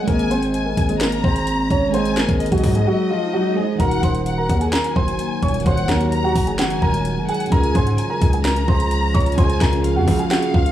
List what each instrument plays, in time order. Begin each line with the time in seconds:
0.03 tine electric piano G#3 G#4
0.08 808-style bass G#1, grand piano A#3 A#4, tine electric piano C5, violin section G#5, kick, closed hi-hat
0.12 tine electric piano D#5
0.19 closed hi-hat
0.31 grand piano C4 C5, closed hi-hat
0.43 closed hi-hat
0.54 violin section G#5, closed hi-hat
0.66 grand piano A#3 A#4
0.77 808-style bass G#1, kick, closed hi-hat
0.89 grand piano G#3 G#4, closed hi-hat
1.01 grand piano A#3 A#4, violin section A#5, snare, clap, closed hi-hat
1.12 closed hi-hat
1.24 808-style bass G#1, grand piano C4 C5, kick
1.36 closed hi-hat
1.47 closed hi-hat
1.71 808-style bass G#1, grand piano C#4 C#5, kick, closed hi-hat
1.89 tine electric piano G#3 G#4
1.94 grand piano C4 C5, tine electric piano C5, violin section G#5, closed hi-hat, swell
1.98 tine electric piano D#5
2.05 closed hi-hat
2.17 grand piano A#3 A#4, snare, clap, closed hi-hat
2.29 808-style bass G#1, kick, closed hi-hat
2.40 violin section D#5, closed hi-hat
2.46 closed hi-hat
2.52 808-style bass G#1, grand piano F#3 F#4, kick, closed hi-hat
2.58 closed hi-hat
2.63 808-style bass G#2, kick, open hi-hat
2.75 grand piano G#3 G#4, closed hi-hat
2.87 grand piano F#3 F#4
3.10 grand piano F3 F4
3.33 grand piano F#3 F#4
3.54 tine electric piano G#3 G#4 C5, grand piano G#3 G#4
3.59 tine electric piano D#5
3.75 tine electric piano D#3 D#4
3.80 808-style bass D#1, ambient pad D#3 F#3 A#3 F#4, tine electric piano F#4, grand piano A#4 A#5, violin section F#5, kick, closed hi-hat
3.84 tine electric piano A#4
3.91 closed hi-hat
4.03 808-style bass D#1, grand piano C5 C6, kick, closed hi-hat
4.15 closed hi-hat
4.26 violin section F#5, closed hi-hat
4.38 grand piano A#4 A#5
4.49 808-style bass D#2, kick, closed hi-hat
4.61 grand piano G#4 G#5, closed hi-hat
4.73 grand piano A#4 A#5, violin section G#5, snare, clap, closed hi-hat
4.84 closed hi-hat
4.96 808-style bass F#1, grand piano C5 C6, kick
5.08 closed hi-hat
5.19 closed hi-hat
5.43 808-style bass D#1, grand piano C#5 C#6, kick, closed hi-hat
5.48 closed hi-hat
5.54 closed hi-hat
5.60 tine electric piano D#3, closed hi-hat
5.64 808-style bass D#1, ambient pad G#3, tine electric piano D#4 F#4, grand piano C5 C6, violin section F#5, kick, closed hi-hat
5.70 tine electric piano C#5
5.78 closed hi-hat
5.89 808-style bass D#2, grand piano A#4 A#5, kick, snare, clap, closed hi-hat
6.01 closed hi-hat
6.12 violin section A#5, closed hi-hat
6.24 grand piano F#4 F#5
6.36 808-style bass F#1, kick, open hi-hat
6.47 grand piano G#4 G#5, closed hi-hat
6.59 grand piano F#4 F#5, violin section G#5, snare, clap, closed hi-hat
6.70 closed hi-hat
6.82 808-style bass D#1, grand piano A#4 A#5, kick
6.94 closed hi-hat
7.05 closed hi-hat
7.17 808-style bass F#1
7.29 grand piano G#4 G#5, violin section F#5, closed hi-hat
7.34 closed hi-hat
7.40 closed hi-hat
7.46 tine electric piano C#3, closed hi-hat
7.50 808-style bass C#2, ambient pad C#3 F3 F4, tine electric piano C#4 F4, grand piano A#4 A#5, violin section G#5, kick, closed hi-hat
7.56 tine electric piano G#4
7.64 closed hi-hat
7.75 808-style bass G#2, grand piano C5 C6, kick, closed hi-hat
7.87 closed hi-hat
7.98 violin section G#5, closed hi-hat
8.10 grand piano A#4 A#5
8.22 808-style bass C#2, kick, closed hi-hat
8.33 grand piano G#4 G#5, closed hi-hat
8.45 grand piano A#4 A#5, violin section A#5, snare, clap, closed hi-hat
8.56 closed hi-hat
8.68 808-style bass C#2, grand piano C5 C6, kick
8.80 closed hi-hat
8.91 closed hi-hat
9.14 808-style bass C#2, grand piano C#5 C#6, kick, closed hi-hat
9.20 closed hi-hat
9.26 closed hi-hat
9.32 tine electric piano C#3, closed hi-hat
9.37 808-style bass C#2, ambient pad A#3, tine electric piano C#4 F4, grand piano C5 C6, violin section G#5, kick, closed hi-hat
9.43 tine electric piano G#4
9.50 closed hi-hat
9.61 808-style bass C#2, grand piano A#4 A#5, kick, snare, clap, closed hi-hat
9.73 closed hi-hat
9.84 violin section F5, closed hi-hat
9.96 808-style bass F2, grand piano F#4 F#5
10.08 808-style bass C#3, kick, open hi-hat
10.19 grand piano G#4 G#5, closed hi-hat
10.31 grand piano F#4 F#5, snare, clap, closed hi-hat
10.43 closed hi-hat
10.54 808-style bass C#2, grand piano F4 F5, kick
10.66 closed hi-hat